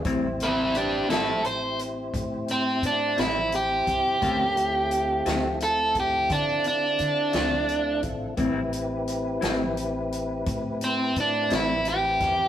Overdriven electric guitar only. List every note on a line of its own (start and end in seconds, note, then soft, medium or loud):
0.43 0.76 C4 medium
0.43 0.76 E4 medium
0.76 1.08 D4 medium
0.76 1.09 G4 medium
1.10 1.42 E4 medium
1.10 1.44 A4 medium
1.46 1.79 C5 medium
2.51 2.83 C4 medium
2.86 3.18 D4 medium
3.19 3.52 E4 medium
3.55 5.58 G4 medium
5.63 5.96 A4 medium
6.00 6.31 G4 medium
6.32 6.65 D4 medium
6.68 8.01 D4 medium
10.84 11.16 C4 medium
11.20 11.52 D4 medium
11.55 11.87 E4 medium
11.89 12.48 G4 medium